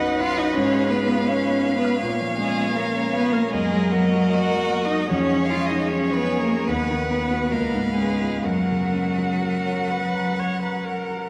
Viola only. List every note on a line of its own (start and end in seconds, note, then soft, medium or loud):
0.00 2.01 B4 medium
2.02 3.55 C#5 medium
3.54 5.08 A#4 medium
5.08 5.84 G#4 medium
5.88 6.71 G#4 medium
6.69 7.52 B4 medium
7.53 8.47 B4 medium
8.45 9.32 A#4 medium
9.40 9.92 A#4 medium
9.90 10.41 B4 medium
10.39 10.62 C#5 medium
10.62 10.86 B4 medium
10.84 11.29 A#4 medium